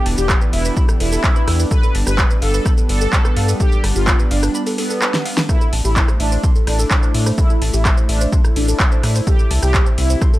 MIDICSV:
0, 0, Header, 1, 6, 480
1, 0, Start_track
1, 0, Key_signature, 0, "minor"
1, 0, Tempo, 472441
1, 1738, Time_signature, 4, 2, 24, 8
1, 10557, End_track
2, 0, Start_track
2, 0, Title_t, "Synth arpeggio sound"
2, 0, Program_c, 0, 84
2, 58, Note_on_c, 0, 81, 103
2, 145, Note_off_c, 0, 81, 0
2, 179, Note_on_c, 0, 67, 82
2, 292, Note_off_c, 0, 67, 0
2, 298, Note_on_c, 0, 83, 103
2, 385, Note_off_c, 0, 83, 0
2, 420, Note_on_c, 0, 71, 80
2, 505, Note_off_c, 0, 71, 0
2, 539, Note_on_c, 0, 76, 104
2, 625, Note_off_c, 0, 76, 0
2, 660, Note_on_c, 0, 71, 74
2, 711, Note_off_c, 0, 71, 0
2, 779, Note_on_c, 0, 83, 100
2, 865, Note_off_c, 0, 83, 0
2, 900, Note_on_c, 0, 69, 77
2, 985, Note_off_c, 0, 69, 0
2, 1019, Note_on_c, 0, 69, 77
2, 1071, Note_off_c, 0, 69, 0
2, 1140, Note_on_c, 0, 69, 99
2, 1191, Note_off_c, 0, 69, 0
2, 1259, Note_on_c, 0, 81, 107
2, 1311, Note_off_c, 0, 81, 0
2, 1380, Note_on_c, 0, 71, 76
2, 1465, Note_off_c, 0, 71, 0
2, 1498, Note_on_c, 0, 76, 108
2, 1585, Note_off_c, 0, 76, 0
2, 1619, Note_on_c, 0, 71, 79
2, 1671, Note_off_c, 0, 71, 0
2, 1738, Note_on_c, 0, 69, 104
2, 1825, Note_off_c, 0, 69, 0
2, 1860, Note_on_c, 0, 69, 77
2, 1945, Note_off_c, 0, 69, 0
2, 1979, Note_on_c, 0, 81, 104
2, 2066, Note_off_c, 0, 81, 0
2, 2100, Note_on_c, 0, 67, 79
2, 2213, Note_off_c, 0, 67, 0
2, 2218, Note_on_c, 0, 83, 105
2, 2305, Note_off_c, 0, 83, 0
2, 2340, Note_on_c, 0, 71, 78
2, 2425, Note_off_c, 0, 71, 0
2, 2458, Note_on_c, 0, 77, 105
2, 2545, Note_off_c, 0, 77, 0
2, 2580, Note_on_c, 0, 71, 75
2, 2631, Note_off_c, 0, 71, 0
2, 2698, Note_on_c, 0, 83, 102
2, 2785, Note_off_c, 0, 83, 0
2, 2820, Note_on_c, 0, 69, 77
2, 2905, Note_off_c, 0, 69, 0
2, 2939, Note_on_c, 0, 69, 78
2, 2991, Note_off_c, 0, 69, 0
2, 3060, Note_on_c, 0, 69, 102
2, 3111, Note_off_c, 0, 69, 0
2, 3178, Note_on_c, 0, 81, 105
2, 3231, Note_off_c, 0, 81, 0
2, 3301, Note_on_c, 0, 71, 76
2, 3385, Note_off_c, 0, 71, 0
2, 3419, Note_on_c, 0, 77, 105
2, 3506, Note_off_c, 0, 77, 0
2, 3540, Note_on_c, 0, 71, 78
2, 3591, Note_off_c, 0, 71, 0
2, 3659, Note_on_c, 0, 69, 104
2, 3745, Note_off_c, 0, 69, 0
2, 3780, Note_on_c, 0, 69, 80
2, 3865, Note_off_c, 0, 69, 0
2, 3899, Note_on_c, 0, 81, 99
2, 3986, Note_off_c, 0, 81, 0
2, 4020, Note_on_c, 0, 67, 80
2, 4133, Note_off_c, 0, 67, 0
2, 4139, Note_on_c, 0, 83, 107
2, 4225, Note_off_c, 0, 83, 0
2, 4260, Note_on_c, 0, 71, 80
2, 4345, Note_off_c, 0, 71, 0
2, 4379, Note_on_c, 0, 77, 105
2, 4466, Note_off_c, 0, 77, 0
2, 4501, Note_on_c, 0, 71, 75
2, 4551, Note_off_c, 0, 71, 0
2, 4619, Note_on_c, 0, 83, 103
2, 4706, Note_off_c, 0, 83, 0
2, 4740, Note_on_c, 0, 69, 78
2, 4825, Note_off_c, 0, 69, 0
2, 4858, Note_on_c, 0, 69, 77
2, 4911, Note_off_c, 0, 69, 0
2, 4980, Note_on_c, 0, 69, 101
2, 5031, Note_off_c, 0, 69, 0
2, 5098, Note_on_c, 0, 81, 104
2, 5151, Note_off_c, 0, 81, 0
2, 5221, Note_on_c, 0, 71, 77
2, 5305, Note_off_c, 0, 71, 0
2, 5338, Note_on_c, 0, 77, 104
2, 5425, Note_off_c, 0, 77, 0
2, 5459, Note_on_c, 0, 71, 80
2, 5511, Note_off_c, 0, 71, 0
2, 5578, Note_on_c, 0, 69, 101
2, 5665, Note_off_c, 0, 69, 0
2, 5700, Note_on_c, 0, 69, 76
2, 5785, Note_off_c, 0, 69, 0
2, 5819, Note_on_c, 0, 81, 100
2, 5905, Note_off_c, 0, 81, 0
2, 5940, Note_on_c, 0, 67, 79
2, 6053, Note_off_c, 0, 67, 0
2, 6058, Note_on_c, 0, 84, 108
2, 6145, Note_off_c, 0, 84, 0
2, 6180, Note_on_c, 0, 72, 80
2, 6265, Note_off_c, 0, 72, 0
2, 6298, Note_on_c, 0, 76, 106
2, 6385, Note_off_c, 0, 76, 0
2, 6419, Note_on_c, 0, 72, 73
2, 6471, Note_off_c, 0, 72, 0
2, 6538, Note_on_c, 0, 84, 105
2, 6625, Note_off_c, 0, 84, 0
2, 6659, Note_on_c, 0, 69, 81
2, 6745, Note_off_c, 0, 69, 0
2, 6778, Note_on_c, 0, 69, 76
2, 6830, Note_off_c, 0, 69, 0
2, 6899, Note_on_c, 0, 69, 106
2, 6951, Note_off_c, 0, 69, 0
2, 7018, Note_on_c, 0, 81, 102
2, 7071, Note_off_c, 0, 81, 0
2, 7140, Note_on_c, 0, 72, 76
2, 7225, Note_off_c, 0, 72, 0
2, 7258, Note_on_c, 0, 76, 103
2, 7345, Note_off_c, 0, 76, 0
2, 7379, Note_on_c, 0, 72, 78
2, 7430, Note_off_c, 0, 72, 0
2, 7498, Note_on_c, 0, 69, 104
2, 7585, Note_off_c, 0, 69, 0
2, 7619, Note_on_c, 0, 69, 76
2, 7705, Note_off_c, 0, 69, 0
2, 7738, Note_on_c, 0, 81, 101
2, 7825, Note_off_c, 0, 81, 0
2, 7859, Note_on_c, 0, 67, 81
2, 7972, Note_off_c, 0, 67, 0
2, 7977, Note_on_c, 0, 84, 103
2, 8065, Note_off_c, 0, 84, 0
2, 8099, Note_on_c, 0, 72, 79
2, 8184, Note_off_c, 0, 72, 0
2, 8217, Note_on_c, 0, 76, 105
2, 8305, Note_off_c, 0, 76, 0
2, 8339, Note_on_c, 0, 72, 76
2, 8390, Note_off_c, 0, 72, 0
2, 8458, Note_on_c, 0, 84, 100
2, 8545, Note_off_c, 0, 84, 0
2, 8579, Note_on_c, 0, 69, 77
2, 8665, Note_off_c, 0, 69, 0
2, 8698, Note_on_c, 0, 69, 79
2, 8751, Note_off_c, 0, 69, 0
2, 8820, Note_on_c, 0, 69, 100
2, 8871, Note_off_c, 0, 69, 0
2, 8939, Note_on_c, 0, 81, 105
2, 8991, Note_off_c, 0, 81, 0
2, 9060, Note_on_c, 0, 72, 78
2, 9145, Note_off_c, 0, 72, 0
2, 9179, Note_on_c, 0, 76, 104
2, 9266, Note_off_c, 0, 76, 0
2, 9300, Note_on_c, 0, 72, 77
2, 9351, Note_off_c, 0, 72, 0
2, 9419, Note_on_c, 0, 69, 102
2, 9505, Note_off_c, 0, 69, 0
2, 9540, Note_on_c, 0, 69, 79
2, 9625, Note_off_c, 0, 69, 0
2, 9659, Note_on_c, 0, 81, 105
2, 9745, Note_off_c, 0, 81, 0
2, 9780, Note_on_c, 0, 67, 80
2, 9893, Note_off_c, 0, 67, 0
2, 9898, Note_on_c, 0, 84, 107
2, 9985, Note_off_c, 0, 84, 0
2, 10020, Note_on_c, 0, 72, 81
2, 10105, Note_off_c, 0, 72, 0
2, 10138, Note_on_c, 0, 76, 101
2, 10225, Note_off_c, 0, 76, 0
2, 10260, Note_on_c, 0, 72, 77
2, 10311, Note_off_c, 0, 72, 0
2, 10379, Note_on_c, 0, 84, 102
2, 10466, Note_off_c, 0, 84, 0
2, 10501, Note_on_c, 0, 69, 80
2, 10557, Note_off_c, 0, 69, 0
2, 10557, End_track
3, 0, Start_track
3, 0, Title_t, "Analog polysynth"
3, 0, Program_c, 1, 90
3, 179, Note_on_c, 1, 67, 102
3, 417, Note_off_c, 1, 67, 0
3, 538, Note_on_c, 1, 64, 99
3, 856, Note_off_c, 1, 64, 0
3, 1018, Note_on_c, 1, 64, 104
3, 1644, Note_off_c, 1, 64, 0
3, 1738, Note_on_c, 1, 71, 104
3, 1976, Note_off_c, 1, 71, 0
3, 2099, Note_on_c, 1, 71, 101
3, 2337, Note_off_c, 1, 71, 0
3, 2458, Note_on_c, 1, 69, 101
3, 2776, Note_off_c, 1, 69, 0
3, 2938, Note_on_c, 1, 69, 103
3, 3563, Note_off_c, 1, 69, 0
3, 3659, Note_on_c, 1, 67, 105
3, 3896, Note_off_c, 1, 67, 0
3, 4020, Note_on_c, 1, 65, 99
3, 4258, Note_off_c, 1, 65, 0
3, 4378, Note_on_c, 1, 62, 98
3, 4696, Note_off_c, 1, 62, 0
3, 4858, Note_on_c, 1, 59, 101
3, 5483, Note_off_c, 1, 59, 0
3, 5578, Note_on_c, 1, 64, 105
3, 5816, Note_off_c, 1, 64, 0
3, 5940, Note_on_c, 1, 64, 100
3, 6177, Note_off_c, 1, 64, 0
3, 6299, Note_on_c, 1, 62, 99
3, 6616, Note_off_c, 1, 62, 0
3, 6779, Note_on_c, 1, 62, 101
3, 7404, Note_off_c, 1, 62, 0
3, 7498, Note_on_c, 1, 64, 105
3, 7736, Note_off_c, 1, 64, 0
3, 7860, Note_on_c, 1, 64, 96
3, 8097, Note_off_c, 1, 64, 0
3, 8219, Note_on_c, 1, 62, 98
3, 8536, Note_off_c, 1, 62, 0
3, 8699, Note_on_c, 1, 62, 100
3, 9324, Note_off_c, 1, 62, 0
3, 9418, Note_on_c, 1, 67, 102
3, 9656, Note_off_c, 1, 67, 0
3, 9780, Note_on_c, 1, 67, 100
3, 10017, Note_off_c, 1, 67, 0
3, 10138, Note_on_c, 1, 64, 100
3, 10456, Note_off_c, 1, 64, 0
3, 10557, End_track
4, 0, Start_track
4, 0, Title_t, "Analog synth pad"
4, 0, Program_c, 2, 89
4, 0, Note_on_c, 2, 52, 84
4, 0, Note_on_c, 2, 59, 80
4, 0, Note_on_c, 2, 62, 78
4, 0, Note_on_c, 2, 67, 95
4, 1699, Note_off_c, 2, 67, 0
4, 1700, Note_off_c, 2, 52, 0
4, 1700, Note_off_c, 2, 59, 0
4, 1738, Note_on_c, 2, 59, 76
4, 1739, Note_on_c, 2, 55, 87
4, 5538, Note_off_c, 2, 62, 0
4, 5540, Note_off_c, 2, 55, 0
4, 5540, Note_off_c, 2, 59, 0
4, 5579, Note_on_c, 2, 57, 85
4, 5579, Note_on_c, 2, 64, 93
4, 9380, Note_off_c, 2, 57, 0
4, 9419, Note_on_c, 2, 48, 86
4, 9419, Note_on_c, 2, 67, 96
4, 10557, Note_off_c, 2, 48, 0
4, 10557, Note_off_c, 2, 64, 0
4, 10557, Note_off_c, 2, 67, 0
4, 10557, End_track
5, 0, Start_track
5, 0, Title_t, "Analog synth bass"
5, 0, Program_c, 3, 38
5, 59, Note_on_c, 3, 28, 103
5, 150, Note_off_c, 3, 28, 0
5, 180, Note_on_c, 3, 28, 99
5, 359, Note_off_c, 3, 28, 0
5, 538, Note_on_c, 3, 28, 100
5, 719, Note_off_c, 3, 28, 0
5, 1018, Note_on_c, 3, 28, 98
5, 1199, Note_off_c, 3, 28, 0
5, 1499, Note_on_c, 3, 40, 85
5, 1679, Note_off_c, 3, 40, 0
5, 1978, Note_on_c, 3, 31, 102
5, 2069, Note_off_c, 3, 31, 0
5, 2100, Note_on_c, 3, 31, 101
5, 2279, Note_off_c, 3, 31, 0
5, 2459, Note_on_c, 3, 31, 102
5, 2639, Note_off_c, 3, 31, 0
5, 2938, Note_on_c, 3, 31, 100
5, 3119, Note_off_c, 3, 31, 0
5, 3419, Note_on_c, 3, 43, 89
5, 3599, Note_off_c, 3, 43, 0
5, 3899, Note_on_c, 3, 31, 100
5, 3990, Note_off_c, 3, 31, 0
5, 4020, Note_on_c, 3, 31, 102
5, 4199, Note_off_c, 3, 31, 0
5, 4379, Note_on_c, 3, 31, 104
5, 4559, Note_off_c, 3, 31, 0
5, 5818, Note_on_c, 3, 33, 100
5, 5909, Note_off_c, 3, 33, 0
5, 5940, Note_on_c, 3, 33, 100
5, 6119, Note_off_c, 3, 33, 0
5, 6298, Note_on_c, 3, 33, 100
5, 6479, Note_off_c, 3, 33, 0
5, 6778, Note_on_c, 3, 33, 99
5, 6959, Note_off_c, 3, 33, 0
5, 7258, Note_on_c, 3, 45, 86
5, 7439, Note_off_c, 3, 45, 0
5, 7738, Note_on_c, 3, 33, 102
5, 7829, Note_off_c, 3, 33, 0
5, 7860, Note_on_c, 3, 33, 103
5, 8039, Note_off_c, 3, 33, 0
5, 8219, Note_on_c, 3, 33, 104
5, 8399, Note_off_c, 3, 33, 0
5, 8698, Note_on_c, 3, 33, 98
5, 8879, Note_off_c, 3, 33, 0
5, 9178, Note_on_c, 3, 45, 88
5, 9359, Note_off_c, 3, 45, 0
5, 9658, Note_on_c, 3, 36, 102
5, 9749, Note_off_c, 3, 36, 0
5, 9779, Note_on_c, 3, 36, 101
5, 9959, Note_off_c, 3, 36, 0
5, 10138, Note_on_c, 3, 36, 101
5, 10319, Note_off_c, 3, 36, 0
5, 10557, End_track
6, 0, Start_track
6, 0, Title_t, "Drums"
6, 60, Note_on_c, 9, 46, 103
6, 161, Note_off_c, 9, 46, 0
6, 181, Note_on_c, 9, 82, 68
6, 282, Note_off_c, 9, 82, 0
6, 298, Note_on_c, 9, 36, 115
6, 299, Note_on_c, 9, 37, 53
6, 299, Note_on_c, 9, 39, 99
6, 299, Note_on_c, 9, 82, 56
6, 400, Note_off_c, 9, 36, 0
6, 401, Note_off_c, 9, 37, 0
6, 401, Note_off_c, 9, 39, 0
6, 401, Note_off_c, 9, 82, 0
6, 421, Note_on_c, 9, 82, 35
6, 522, Note_off_c, 9, 82, 0
6, 539, Note_on_c, 9, 46, 103
6, 641, Note_off_c, 9, 46, 0
6, 661, Note_on_c, 9, 82, 70
6, 763, Note_off_c, 9, 82, 0
6, 778, Note_on_c, 9, 36, 121
6, 779, Note_on_c, 9, 82, 57
6, 880, Note_off_c, 9, 36, 0
6, 881, Note_off_c, 9, 82, 0
6, 901, Note_on_c, 9, 37, 55
6, 901, Note_on_c, 9, 82, 33
6, 1002, Note_off_c, 9, 37, 0
6, 1002, Note_off_c, 9, 82, 0
6, 1019, Note_on_c, 9, 46, 101
6, 1121, Note_off_c, 9, 46, 0
6, 1140, Note_on_c, 9, 82, 67
6, 1242, Note_off_c, 9, 82, 0
6, 1258, Note_on_c, 9, 36, 120
6, 1259, Note_on_c, 9, 39, 99
6, 1259, Note_on_c, 9, 82, 55
6, 1360, Note_off_c, 9, 36, 0
6, 1361, Note_off_c, 9, 39, 0
6, 1361, Note_off_c, 9, 82, 0
6, 1381, Note_on_c, 9, 82, 34
6, 1482, Note_off_c, 9, 82, 0
6, 1499, Note_on_c, 9, 37, 56
6, 1499, Note_on_c, 9, 46, 103
6, 1601, Note_off_c, 9, 37, 0
6, 1601, Note_off_c, 9, 46, 0
6, 1621, Note_on_c, 9, 82, 70
6, 1722, Note_off_c, 9, 82, 0
6, 1738, Note_on_c, 9, 36, 115
6, 1739, Note_on_c, 9, 82, 61
6, 1840, Note_off_c, 9, 36, 0
6, 1841, Note_off_c, 9, 82, 0
6, 1861, Note_on_c, 9, 82, 36
6, 1962, Note_off_c, 9, 82, 0
6, 1979, Note_on_c, 9, 46, 100
6, 2081, Note_off_c, 9, 46, 0
6, 2101, Note_on_c, 9, 37, 57
6, 2101, Note_on_c, 9, 82, 73
6, 2202, Note_off_c, 9, 37, 0
6, 2202, Note_off_c, 9, 82, 0
6, 2218, Note_on_c, 9, 36, 114
6, 2219, Note_on_c, 9, 39, 98
6, 2219, Note_on_c, 9, 82, 57
6, 2320, Note_off_c, 9, 36, 0
6, 2321, Note_off_c, 9, 39, 0
6, 2321, Note_off_c, 9, 82, 0
6, 2340, Note_on_c, 9, 82, 35
6, 2442, Note_off_c, 9, 82, 0
6, 2459, Note_on_c, 9, 46, 100
6, 2561, Note_off_c, 9, 46, 0
6, 2581, Note_on_c, 9, 82, 70
6, 2682, Note_off_c, 9, 82, 0
6, 2698, Note_on_c, 9, 36, 118
6, 2699, Note_on_c, 9, 37, 59
6, 2699, Note_on_c, 9, 82, 58
6, 2800, Note_off_c, 9, 36, 0
6, 2801, Note_off_c, 9, 37, 0
6, 2801, Note_off_c, 9, 82, 0
6, 2821, Note_on_c, 9, 82, 36
6, 2922, Note_off_c, 9, 82, 0
6, 2939, Note_on_c, 9, 46, 101
6, 3041, Note_off_c, 9, 46, 0
6, 3060, Note_on_c, 9, 82, 68
6, 3162, Note_off_c, 9, 82, 0
6, 3178, Note_on_c, 9, 36, 117
6, 3180, Note_on_c, 9, 39, 105
6, 3180, Note_on_c, 9, 82, 60
6, 3280, Note_off_c, 9, 36, 0
6, 3281, Note_off_c, 9, 39, 0
6, 3281, Note_off_c, 9, 82, 0
6, 3301, Note_on_c, 9, 37, 55
6, 3301, Note_on_c, 9, 82, 35
6, 3402, Note_off_c, 9, 37, 0
6, 3402, Note_off_c, 9, 82, 0
6, 3419, Note_on_c, 9, 46, 106
6, 3521, Note_off_c, 9, 46, 0
6, 3541, Note_on_c, 9, 82, 71
6, 3643, Note_off_c, 9, 82, 0
6, 3658, Note_on_c, 9, 36, 112
6, 3659, Note_on_c, 9, 82, 59
6, 3760, Note_off_c, 9, 36, 0
6, 3761, Note_off_c, 9, 82, 0
6, 3781, Note_on_c, 9, 82, 37
6, 3882, Note_off_c, 9, 82, 0
6, 3899, Note_on_c, 9, 37, 56
6, 3899, Note_on_c, 9, 46, 105
6, 4001, Note_off_c, 9, 37, 0
6, 4001, Note_off_c, 9, 46, 0
6, 4020, Note_on_c, 9, 82, 72
6, 4122, Note_off_c, 9, 82, 0
6, 4138, Note_on_c, 9, 36, 118
6, 4139, Note_on_c, 9, 39, 107
6, 4139, Note_on_c, 9, 82, 58
6, 4240, Note_off_c, 9, 36, 0
6, 4240, Note_off_c, 9, 39, 0
6, 4240, Note_off_c, 9, 82, 0
6, 4260, Note_on_c, 9, 82, 36
6, 4362, Note_off_c, 9, 82, 0
6, 4379, Note_on_c, 9, 46, 105
6, 4480, Note_off_c, 9, 46, 0
6, 4500, Note_on_c, 9, 37, 56
6, 4500, Note_on_c, 9, 82, 73
6, 4602, Note_off_c, 9, 37, 0
6, 4602, Note_off_c, 9, 82, 0
6, 4619, Note_on_c, 9, 82, 59
6, 4721, Note_off_c, 9, 82, 0
6, 4740, Note_on_c, 9, 46, 59
6, 4740, Note_on_c, 9, 82, 34
6, 4842, Note_off_c, 9, 46, 0
6, 4842, Note_off_c, 9, 82, 0
6, 4859, Note_on_c, 9, 46, 104
6, 4961, Note_off_c, 9, 46, 0
6, 4981, Note_on_c, 9, 82, 72
6, 5082, Note_off_c, 9, 82, 0
6, 5099, Note_on_c, 9, 37, 54
6, 5099, Note_on_c, 9, 39, 107
6, 5099, Note_on_c, 9, 82, 58
6, 5201, Note_off_c, 9, 37, 0
6, 5201, Note_off_c, 9, 39, 0
6, 5201, Note_off_c, 9, 82, 0
6, 5221, Note_on_c, 9, 38, 76
6, 5221, Note_on_c, 9, 82, 37
6, 5322, Note_off_c, 9, 38, 0
6, 5322, Note_off_c, 9, 82, 0
6, 5339, Note_on_c, 9, 46, 106
6, 5441, Note_off_c, 9, 46, 0
6, 5461, Note_on_c, 9, 38, 100
6, 5461, Note_on_c, 9, 82, 72
6, 5562, Note_off_c, 9, 38, 0
6, 5562, Note_off_c, 9, 82, 0
6, 5578, Note_on_c, 9, 36, 116
6, 5579, Note_on_c, 9, 37, 55
6, 5579, Note_on_c, 9, 82, 61
6, 5680, Note_off_c, 9, 36, 0
6, 5681, Note_off_c, 9, 37, 0
6, 5681, Note_off_c, 9, 82, 0
6, 5701, Note_on_c, 9, 82, 36
6, 5802, Note_off_c, 9, 82, 0
6, 5819, Note_on_c, 9, 46, 106
6, 5920, Note_off_c, 9, 46, 0
6, 5941, Note_on_c, 9, 82, 73
6, 6042, Note_off_c, 9, 82, 0
6, 6058, Note_on_c, 9, 36, 120
6, 6059, Note_on_c, 9, 39, 108
6, 6059, Note_on_c, 9, 82, 59
6, 6159, Note_off_c, 9, 36, 0
6, 6161, Note_off_c, 9, 39, 0
6, 6161, Note_off_c, 9, 82, 0
6, 6180, Note_on_c, 9, 37, 54
6, 6180, Note_on_c, 9, 82, 36
6, 6282, Note_off_c, 9, 37, 0
6, 6282, Note_off_c, 9, 82, 0
6, 6298, Note_on_c, 9, 46, 105
6, 6400, Note_off_c, 9, 46, 0
6, 6420, Note_on_c, 9, 82, 75
6, 6522, Note_off_c, 9, 82, 0
6, 6538, Note_on_c, 9, 36, 123
6, 6539, Note_on_c, 9, 82, 59
6, 6640, Note_off_c, 9, 36, 0
6, 6640, Note_off_c, 9, 82, 0
6, 6660, Note_on_c, 9, 82, 34
6, 6762, Note_off_c, 9, 82, 0
6, 6779, Note_on_c, 9, 37, 53
6, 6779, Note_on_c, 9, 46, 108
6, 6881, Note_off_c, 9, 37, 0
6, 6881, Note_off_c, 9, 46, 0
6, 6900, Note_on_c, 9, 82, 72
6, 7002, Note_off_c, 9, 82, 0
6, 7018, Note_on_c, 9, 36, 121
6, 7019, Note_on_c, 9, 39, 111
6, 7019, Note_on_c, 9, 82, 61
6, 7120, Note_off_c, 9, 36, 0
6, 7121, Note_off_c, 9, 39, 0
6, 7121, Note_off_c, 9, 82, 0
6, 7140, Note_on_c, 9, 82, 35
6, 7242, Note_off_c, 9, 82, 0
6, 7259, Note_on_c, 9, 46, 110
6, 7361, Note_off_c, 9, 46, 0
6, 7380, Note_on_c, 9, 37, 53
6, 7380, Note_on_c, 9, 82, 72
6, 7482, Note_off_c, 9, 37, 0
6, 7482, Note_off_c, 9, 82, 0
6, 7498, Note_on_c, 9, 36, 127
6, 7499, Note_on_c, 9, 82, 56
6, 7599, Note_off_c, 9, 36, 0
6, 7600, Note_off_c, 9, 82, 0
6, 7620, Note_on_c, 9, 82, 35
6, 7722, Note_off_c, 9, 82, 0
6, 7738, Note_on_c, 9, 46, 107
6, 7840, Note_off_c, 9, 46, 0
6, 7860, Note_on_c, 9, 82, 70
6, 7962, Note_off_c, 9, 82, 0
6, 7978, Note_on_c, 9, 36, 127
6, 7979, Note_on_c, 9, 37, 50
6, 7979, Note_on_c, 9, 39, 106
6, 7979, Note_on_c, 9, 82, 55
6, 8079, Note_off_c, 9, 36, 0
6, 8080, Note_off_c, 9, 37, 0
6, 8080, Note_off_c, 9, 39, 0
6, 8080, Note_off_c, 9, 82, 0
6, 8101, Note_on_c, 9, 82, 35
6, 8202, Note_off_c, 9, 82, 0
6, 8219, Note_on_c, 9, 46, 110
6, 8321, Note_off_c, 9, 46, 0
6, 8341, Note_on_c, 9, 82, 69
6, 8442, Note_off_c, 9, 82, 0
6, 8458, Note_on_c, 9, 36, 124
6, 8459, Note_on_c, 9, 82, 59
6, 8559, Note_off_c, 9, 36, 0
6, 8561, Note_off_c, 9, 82, 0
6, 8580, Note_on_c, 9, 37, 53
6, 8580, Note_on_c, 9, 82, 35
6, 8682, Note_off_c, 9, 37, 0
6, 8682, Note_off_c, 9, 82, 0
6, 8699, Note_on_c, 9, 46, 108
6, 8800, Note_off_c, 9, 46, 0
6, 8820, Note_on_c, 9, 82, 70
6, 8922, Note_off_c, 9, 82, 0
6, 8938, Note_on_c, 9, 36, 127
6, 8938, Note_on_c, 9, 39, 111
6, 8938, Note_on_c, 9, 82, 59
6, 9040, Note_off_c, 9, 36, 0
6, 9040, Note_off_c, 9, 39, 0
6, 9040, Note_off_c, 9, 82, 0
6, 9060, Note_on_c, 9, 82, 35
6, 9162, Note_off_c, 9, 82, 0
6, 9179, Note_on_c, 9, 37, 53
6, 9179, Note_on_c, 9, 46, 112
6, 9281, Note_off_c, 9, 37, 0
6, 9281, Note_off_c, 9, 46, 0
6, 9300, Note_on_c, 9, 82, 70
6, 9402, Note_off_c, 9, 82, 0
6, 9418, Note_on_c, 9, 36, 127
6, 9419, Note_on_c, 9, 82, 54
6, 9520, Note_off_c, 9, 36, 0
6, 9521, Note_off_c, 9, 82, 0
6, 9540, Note_on_c, 9, 82, 34
6, 9642, Note_off_c, 9, 82, 0
6, 9659, Note_on_c, 9, 46, 113
6, 9760, Note_off_c, 9, 46, 0
6, 9780, Note_on_c, 9, 37, 52
6, 9780, Note_on_c, 9, 82, 68
6, 9882, Note_off_c, 9, 37, 0
6, 9882, Note_off_c, 9, 82, 0
6, 9898, Note_on_c, 9, 36, 127
6, 9899, Note_on_c, 9, 39, 107
6, 9899, Note_on_c, 9, 82, 54
6, 10000, Note_off_c, 9, 36, 0
6, 10001, Note_off_c, 9, 39, 0
6, 10001, Note_off_c, 9, 82, 0
6, 10021, Note_on_c, 9, 82, 34
6, 10122, Note_off_c, 9, 82, 0
6, 10138, Note_on_c, 9, 46, 112
6, 10240, Note_off_c, 9, 46, 0
6, 10260, Note_on_c, 9, 82, 70
6, 10362, Note_off_c, 9, 82, 0
6, 10378, Note_on_c, 9, 36, 127
6, 10379, Note_on_c, 9, 37, 52
6, 10379, Note_on_c, 9, 82, 57
6, 10480, Note_off_c, 9, 36, 0
6, 10481, Note_off_c, 9, 37, 0
6, 10481, Note_off_c, 9, 82, 0
6, 10500, Note_on_c, 9, 82, 32
6, 10557, Note_off_c, 9, 82, 0
6, 10557, End_track
0, 0, End_of_file